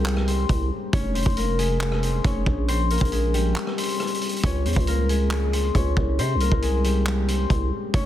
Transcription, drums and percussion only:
0.06 clap, closed hi-hat
0.16 cross-stick
0.28 closed hi-hat
0.49 kick, closed hi-hat
0.93 kick, closed hi-hat
1.15 closed hi-hat
1.22 kick, closed hi-hat
1.30 closed hi-hat
1.37 closed hi-hat
1.59 closed hi-hat
1.81 clap, closed hi-hat
1.92 cross-stick
2.03 closed hi-hat
2.25 kick, cross-stick, closed hi-hat
2.46 kick
2.68 closed hi-hat
2.90 closed hi-hat
2.98 kick, closed hi-hat
3.05 closed hi-hat
3.12 closed hi-hat
3.34 closed hi-hat
3.56 clap, closed hi-hat
3.67 cross-stick
3.78 closed hi-hat
3.83 closed hi-hat
3.89 closed hi-hat
3.94 closed hi-hat
4.00 cross-stick, closed hi-hat
4.07 closed hi-hat
4.14 closed hi-hat
4.21 closed hi-hat, open hi-hat
4.29 closed hi-hat
4.36 closed hi-hat
4.44 kick, closed hi-hat
4.65 closed hi-hat
4.73 kick, closed hi-hat
4.80 closed hi-hat
4.87 closed hi-hat
5.09 closed hi-hat
5.31 clap, closed hi-hat
5.53 closed hi-hat
5.75 kick, closed hi-hat
5.97 kick
6.19 closed hi-hat
6.40 closed hi-hat
6.52 kick
6.62 closed hi-hat
6.84 closed hi-hat
7.06 clap, closed hi-hat
7.28 closed hi-hat
7.50 kick, closed hi-hat
7.94 kick, closed hi-hat

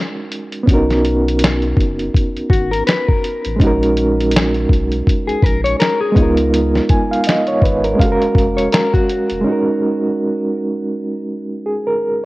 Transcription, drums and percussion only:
0.32 closed hi-hat
0.52 closed hi-hat
0.67 kick, closed hi-hat
0.90 snare, closed hi-hat
1.04 closed hi-hat
1.28 closed hi-hat
1.39 closed hi-hat
1.44 snare
1.62 closed hi-hat
1.77 kick, closed hi-hat
1.99 closed hi-hat
2.14 kick, closed hi-hat
2.37 closed hi-hat
2.50 kick, closed hi-hat
2.73 closed hi-hat
2.87 snare, closed hi-hat
3.09 kick
3.24 closed hi-hat
3.45 closed hi-hat
3.60 kick, closed hi-hat
3.83 closed hi-hat
3.97 closed hi-hat
4.21 closed hi-hat
4.32 closed hi-hat
4.37 snare
4.54 closed hi-hat
4.69 kick, closed hi-hat
4.92 closed hi-hat
5.07 kick, closed hi-hat
5.29 closed hi-hat
5.42 kick, closed hi-hat
5.66 closed hi-hat
5.80 snare, closed hi-hat
6.16 kick, closed hi-hat
6.37 closed hi-hat
6.54 closed hi-hat
6.75 snare
6.89 kick, closed hi-hat
7.13 closed hi-hat
7.24 closed hi-hat
7.29 snare
7.47 closed hi-hat
7.62 kick, closed hi-hat
7.84 closed hi-hat
8.00 kick, closed hi-hat
8.22 closed hi-hat
8.35 kick, closed hi-hat
8.58 closed hi-hat
8.72 snare, closed hi-hat
8.94 kick, closed hi-hat
9.09 closed hi-hat
9.29 closed hi-hat

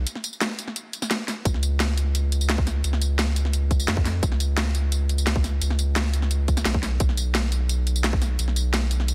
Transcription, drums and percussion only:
0.07 closed hi-hat, tambourine
0.15 snare
0.24 closed hi-hat, tambourine
0.33 tambourine
0.41 snare, closed hi-hat, tambourine
0.59 closed hi-hat, tambourine
0.68 snare
0.76 closed hi-hat, tambourine
0.93 closed hi-hat, tambourine
1.02 snare, tambourine
1.11 snare, closed hi-hat, tambourine
1.28 snare, open hi-hat, tambourine
1.45 kick, closed hi-hat, tambourine
1.54 snare
1.63 closed hi-hat, tambourine
1.80 snare, closed hi-hat, tambourine
1.98 closed hi-hat, tambourine
2.15 closed hi-hat, tambourine
2.32 closed hi-hat, tambourine
2.41 tambourine
2.50 snare, closed hi-hat, tambourine
2.58 kick
2.67 snare, open hi-hat, tambourine
2.84 closed hi-hat, tambourine
2.93 snare
3.02 closed hi-hat, tambourine
3.19 snare, closed hi-hat, tambourine
3.36 closed hi-hat, tambourine
3.45 snare
3.53 closed hi-hat, tambourine
3.71 kick, closed hi-hat, tambourine
3.80 tambourine
3.88 snare, closed hi-hat, tambourine
3.97 kick
4.05 snare, open hi-hat, tambourine
4.23 kick, closed hi-hat, tambourine
4.32 snare
4.40 closed hi-hat, tambourine
4.57 snare, closed hi-hat, tambourine
4.75 closed hi-hat, tambourine
4.92 closed hi-hat, tambourine
5.09 closed hi-hat, tambourine
5.18 tambourine
5.27 snare, closed hi-hat, tambourine
5.36 kick
5.44 snare, open hi-hat, tambourine
5.62 closed hi-hat, tambourine
5.70 snare
5.79 closed hi-hat, tambourine
5.96 snare, closed hi-hat, tambourine
6.14 closed hi-hat, tambourine
6.22 snare
6.31 closed hi-hat, tambourine
6.48 kick, closed hi-hat, tambourine
6.57 snare, tambourine
6.65 snare, closed hi-hat, tambourine
6.74 kick
6.83 snare, open hi-hat, tambourine
7.00 kick, closed hi-hat, tambourine
7.09 snare
7.17 closed hi-hat, tambourine
7.35 snare, closed hi-hat, tambourine
7.52 closed hi-hat, tambourine
7.69 closed hi-hat, tambourine
7.87 closed hi-hat, tambourine
7.96 tambourine
8.04 snare, closed hi-hat, tambourine
8.13 kick
8.22 snare, open hi-hat, tambourine
8.39 closed hi-hat, tambourine
8.48 snare
8.56 closed hi-hat, tambourine
8.74 snare, closed hi-hat, tambourine
8.91 closed hi-hat, tambourine
9.00 snare
9.08 closed hi-hat, tambourine

